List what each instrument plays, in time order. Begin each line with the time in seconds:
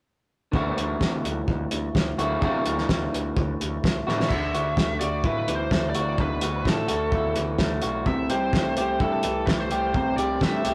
0.52 picked electric bass D2, clean electric guitar D3 E3 A3 E4 F#4, kick
0.77 picked electric bass D2, closed hi-hat
1.01 picked electric bass C3, kick, snare
1.24 picked electric bass D2, closed hi-hat
1.48 picked electric bass D2, kick
1.71 picked electric bass D2, closed hi-hat
1.95 picked electric bass D2, kick, snare
2.18 picked electric bass D2, clean electric guitar D3 E3 A3 E4 F#4, closed hi-hat
2.41 picked electric bass C3, clean electric guitar D3 E3 A3 E4 F#4, kick
2.66 picked electric bass D2, closed hi-hat
2.78 snare
2.89 picked electric bass D2, kick, snare
3.13 picked electric bass D2, closed hi-hat
3.37 picked electric bass D2, kick
3.61 picked electric bass D2, closed hi-hat
3.84 picked electric bass C2, kick, snare
4.07 picked electric bass A2, clean electric guitar D3 E3 A3 E4 F#4, snare
4.20 snare
4.29 picked electric bass D2, clean electric guitar D3, lead electric guitar E5, kick, crash
4.54 picked electric bass D2, clean electric guitar F#4, closed hi-hat
4.77 picked electric bass D2, clean electric guitar A3, kick, snare
5.00 picked electric bass D2, clean electric guitar F#4, lead electric guitar D5, closed hi-hat
5.24 picked electric bass A2, clean electric guitar E4, lead electric guitar B4, kick
5.47 picked electric bass D2, clean electric guitar E3, closed hi-hat
5.55 lead electric guitar C5
5.71 picked electric bass D2, clean electric guitar A3, kick, snare
5.90 lead electric guitar D5
5.95 picked electric bass D2, clean electric guitar F#4, closed hi-hat
6.18 picked electric bass D2, clean electric guitar D3, lead electric guitar B4, kick
6.41 picked electric bass D2, clean electric guitar F#4, closed hi-hat
6.65 picked electric bass A2, clean electric guitar A3, lead electric guitar A4, kick, snare
6.88 picked electric bass D2, clean electric guitar F#4, closed hi-hat
7.12 picked electric bass D2, clean electric guitar E4, kick
7.36 picked electric bass D2, clean electric guitar E3, closed hi-hat
7.58 picked electric bass D2, clean electric guitar A3, kick, snare
7.82 picked electric bass B1, clean electric guitar F#4, closed hi-hat
8.06 picked electric bass C2, clean electric guitar C3, lead electric guitar E5, kick
8.30 picked electric bass C2, clean electric guitar G4, lead electric guitar C5, closed hi-hat
8.53 picked electric bass C2, clean electric guitar A3, kick, snare
8.77 picked electric bass C2, clean electric guitar G4, closed hi-hat
9.00 picked electric bass G2, clean electric guitar E4, lead electric guitar A4, kick
9.12 lead electric guitar A4
9.23 picked electric bass C2, clean electric guitar E3, closed hi-hat
9.46 picked electric bass C2, clean electric guitar A3, lead electric guitar B4, kick, snare
9.60 lead electric guitar C5
9.71 picked electric bass C2, clean electric guitar G4, closed hi-hat
9.94 picked electric bass C2, clean electric guitar C3, lead electric guitar C5, kick
10.17 picked electric bass C2, clean electric guitar G4, lead electric guitar D5, closed hi-hat
10.41 picked electric bass G2, clean electric guitar A3, lead electric guitar E5, kick, snare
10.64 picked electric bass C2, clean electric guitar G4, closed hi-hat